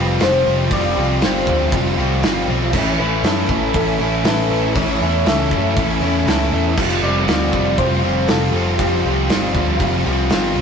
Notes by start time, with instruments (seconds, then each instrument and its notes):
Already playing: picked electric bass F1, overdriven electric guitar F3, distorted electric guitar F3 G3 C4 F4, clean electric guitar F4, analog synth pad G4 F5 G5, soft synth lead B4
0.20 picked electric bass F1, distorted electric guitar F3 G3 C4 F4, soft synth lead C5, snare, open hi-hat
0.45 picked electric bass F1, distorted electric guitar F3 G3 C4 F4
0.70 picked electric bass F1, distorted electric guitar F3 G3 C4 F4, soft synth lead D5, kick, open hi-hat
0.96 picked electric bass C2, distorted electric guitar F3 G3 C4 F4
1.00 overdriven electric guitar G3
1.21 picked electric bass G1, distorted electric guitar F3 G3 C4 F4, soft synth lead C5, snare, open hi-hat
1.47 picked electric bass D2, distorted electric guitar F3 G3 C4 F4, kick
1.72 picked electric bass F1, distorted electric guitar F3 G3 C4 F4, kick, open hi-hat
1.98 picked electric bass C2, distorted electric guitar F3 G3 C4 F4
2.23 picked electric bass G1, distorted electric guitar F3 G3 C4 F4, snare, open hi-hat
2.48 picked electric bass B1, distorted electric guitar F3 G3 C4 F4
2.72 picked electric bass A1, distorted electric guitar A2 E3 A3 C#4 E4, analog synth pad A4 E5 C#6, kick, crash
2.98 picked electric bass A1, distorted electric guitar A2 E3 A3 C#4 E4, soft synth lead B4
3.23 picked electric bass F#2, distorted electric guitar A2 E3 A3 C#4 E4, clean electric guitar A4, snare, open hi-hat
3.49 picked electric bass A1, distorted electric guitar A2 E3 A3 C#4 E4, kick
3.74 picked electric bass A1, distorted electric guitar A2 E3 A3 C#4 E4, soft synth lead A4, kick, open hi-hat
3.99 picked electric bass A1, distorted electric guitar A2 E3 A3 C#4 E4
4.24 picked electric bass A1, distorted electric guitar A2 E3 A3 C#4 E4, clean electric guitar A4, soft synth lead B4, snare, open hi-hat
4.50 picked electric bass A1, distorted electric guitar A2 E3 A3 C#4 E4
4.75 picked electric bass A1, distorted electric guitar A2 E3 A3 C#4 E4, soft synth lead C#5, kick, open hi-hat
5.00 picked electric bass E2, distorted electric guitar A2 E3 A3 C#4 E4
5.25 picked electric bass C#2, distorted electric guitar A2 E3 A3 C#4 E4, clean electric guitar A4, soft synth lead E5, snare, open hi-hat
5.51 picked electric bass F#2, distorted electric guitar A2 E3 A3 C#4 E4, kick
5.75 picked electric bass A1, distorted electric guitar A2 E3 A3 C#4 E4, kick, open hi-hat
6.01 picked electric bass E2, distorted electric guitar A2 E3 A3 C#4 E4
6.26 picked electric bass C#2, distorted electric guitar A2 E3 A3 C#4 E4, clean electric guitar A4, snare, open hi-hat
6.51 picked electric bass E2, distorted electric guitar A2 E3 A3 C#4 E4
6.77 picked electric bass F1, distorted electric guitar F3 G3 C4 F4, analog synth pad G4 F5 C6, kick, crash
7.02 picked electric bass F1, distorted electric guitar F3 G3 C4 F4, soft synth lead D5
7.27 picked electric bass D2, distorted electric guitar F3 G3 C4 F4, snare, open hi-hat
7.52 picked electric bass F1, distorted electric guitar F3 G3 C4 F4, kick
7.78 picked electric bass F1, distorted electric guitar F3 G3 C4 F4, soft synth lead C5, kick, open hi-hat
8.03 picked electric bass F1, distorted electric guitar F3 G3 C4 F4
8.28 picked electric bass F1, distorted electric guitar F3 G3 C4 F4, soft synth lead A4, snare, open hi-hat
8.52 picked electric bass F1, distorted electric guitar F3 G3 C4, overdriven electric guitar F4
8.56 distorted electric guitar F4
8.78 picked electric bass F1, distorted electric guitar F3 G3 C4 F4, soft synth lead G4, kick, open hi-hat
9.04 picked electric bass C2, distorted electric guitar F3 G3 C4 F4
9.29 picked electric bass G1, distorted electric guitar F3 G3 C4 F4, snare, open hi-hat
9.55 picked electric bass D2, distorted electric guitar F3 G3 C4 F4, kick
9.80 picked electric bass F1, distorted electric guitar F3 G3 C4 F4, kick, open hi-hat
10.05 picked electric bass C2, distorted electric guitar F3 G3 C4 F4
10.30 picked electric bass G1, distorted electric guitar F3 G3 C4 F4, snare, open hi-hat
10.55 picked electric bass C2, distorted electric guitar F3 G3 C4 F4